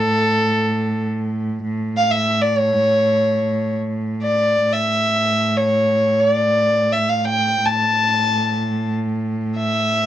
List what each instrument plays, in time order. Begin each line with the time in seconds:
Already playing: cello A2, violin A4
1.63 cello A2
1.97 violin F5
2.12 violin E5
2.41 violin D5
2.58 violin C#5
4.23 violin D5
4.63 cello A2
4.72 violin E5
5.57 violin C#5
6.20 violin C#5
6.31 violin D5
6.92 violin E5
7.09 violin F5
7.25 violin G5
7.62 cello A2, violin A5
9.57 violin E5